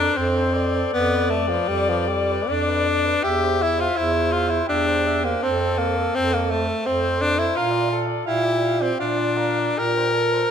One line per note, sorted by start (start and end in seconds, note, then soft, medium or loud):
0.00 0.19 D4 loud
0.00 0.16 A4 medium
0.00 0.15 A#4 medium
0.13 0.84 F2 medium
0.13 0.93 C4 medium
0.13 0.55 C5 medium
0.13 0.38 C5 medium
0.36 0.58 A4 medium
0.54 0.78 C5 medium
0.54 3.22 D5 loud
0.76 0.94 A4 medium
0.93 1.59 F2 medium
0.93 1.31 B3 loud
0.93 1.16 D5 medium
1.15 1.36 B4 medium
1.30 1.50 A3 medium
1.35 1.55 D5 medium
1.49 1.70 F3 medium
1.54 1.70 B4 medium
1.68 2.38 F2 medium
1.68 1.91 G3 medium
1.74 1.91 D5 medium
1.89 2.09 F3 medium
1.89 2.11 B4 medium
2.08 2.51 G3 medium
2.08 2.33 D5 medium
2.32 2.49 B4 medium
2.48 3.15 F2 medium
2.48 3.25 D4 medium
2.48 2.70 D5 medium
2.68 2.89 B4 medium
2.87 3.07 D5 medium
3.05 3.24 B4 medium
3.23 3.88 E2 medium
3.23 3.64 G4 loud
3.23 3.97 E5 medium
3.23 3.45 E5 medium
3.44 3.64 C5 medium
3.62 3.82 E4 loud
3.62 3.80 E5 medium
3.79 3.98 F4 medium
3.79 3.94 C5 medium
3.95 4.60 E2 medium
3.95 4.34 E4 loud
3.95 4.68 C5 medium
3.95 4.14 E5 medium
4.12 4.33 C5 medium
4.32 4.51 F4 medium
4.32 4.51 E5 medium
4.49 4.68 E4 medium
4.49 4.67 C5 medium
4.67 5.34 E2 medium
4.67 5.26 D4 loud
4.67 5.41 G4 medium
4.67 4.89 E5 medium
4.87 5.08 C5 medium
5.07 5.25 E5 medium
5.24 5.44 A#3 medium
5.24 5.43 C5 medium
5.42 6.07 F2 medium
5.42 5.79 C4 loud
5.42 6.58 A4 medium
5.42 5.62 C5 medium
5.61 5.80 A4 medium
5.78 6.16 A#3 medium
5.78 5.98 C5 medium
5.97 6.15 A4 medium
6.15 6.70 F2 medium
6.15 6.35 C4 loud
6.15 6.33 C5 medium
6.31 6.52 A#3 medium
6.31 6.53 A4 medium
6.51 6.88 A3 medium
6.51 6.70 C5 medium
6.68 6.85 A4 medium
6.85 7.49 F2 medium
6.85 7.23 C4 medium
6.85 7.03 C5 medium
6.85 7.58 C5 medium
7.02 7.21 A4 medium
7.19 7.40 D4 loud
7.19 7.38 C5 medium
7.36 7.58 E4 medium
7.36 7.54 A4 medium
7.55 8.19 A#2 medium
7.55 8.03 F4 loud
7.55 7.91 A#4 medium
7.55 7.74 F5 medium
7.72 7.91 D5 medium
7.89 8.27 A4 medium
7.89 8.09 F5 medium
8.07 8.25 D5 medium
8.26 8.91 A#2 medium
8.26 8.83 E4 loud
8.26 9.01 G4 medium
8.26 8.47 F5 medium
8.45 8.65 D5 medium
8.63 8.81 F5 medium
8.80 8.99 C4 medium
8.80 8.98 D5 medium
8.99 9.69 A#2 medium
8.99 9.80 D4 medium
8.99 9.39 F4 medium
8.99 9.20 F5 medium
9.18 9.39 D5 medium
9.37 9.79 A#4 medium
9.37 9.61 F5 medium
9.59 9.77 D5 medium
9.77 10.43 A#2 medium
9.77 10.17 G4 medium
9.77 9.99 A#4 medium
9.77 10.51 A#4 loud
9.97 10.14 C5 medium
10.13 10.51 A4 medium
10.13 10.34 A#4 medium
10.33 10.51 C5 medium